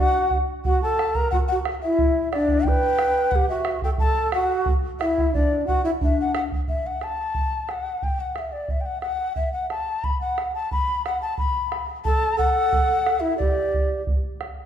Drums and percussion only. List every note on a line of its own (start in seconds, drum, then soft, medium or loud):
0.31 bombo low medium
0.65 bombo low medium
0.99 bombo rim soft
1.15 bombo low medium
1.32 bombo low medium
1.65 bombo rim medium
1.99 bombo low medium
2.33 bombo rim medium
2.48 bombo low medium
2.65 bombo low medium
2.99 bombo rim medium
3.32 bombo low medium
3.65 bombo rim medium
3.82 bombo low medium
3.98 bombo low medium
4.32 bombo rim medium
4.66 bombo low medium
5.01 bombo rim medium
5.18 bombo low medium
5.35 bombo low medium
5.68 bombo low medium
6.01 bombo low medium
6.35 bombo rim medium
6.52 bombo low medium
6.68 bombo low medium
7.01 bombo rim soft
7.35 bombo low medium
7.69 bombo rim soft
8.02 bombo low medium
8.36 bombo rim soft
8.68 bombo low medium
9.02 bombo rim soft
9.36 bombo low soft
9.70 bombo rim soft
10.04 bombo low medium
10.38 bombo rim soft
10.71 bombo low medium
11.06 bombo rim soft
11.38 bombo low medium
11.72 bombo rim medium
12.05 bombo low medium
12.39 bombo low medium
12.73 bombo low medium
13.06 bombo rim medium
13.40 bombo low medium
13.74 bombo low medium
14.07 bombo low medium
14.41 bombo rim soft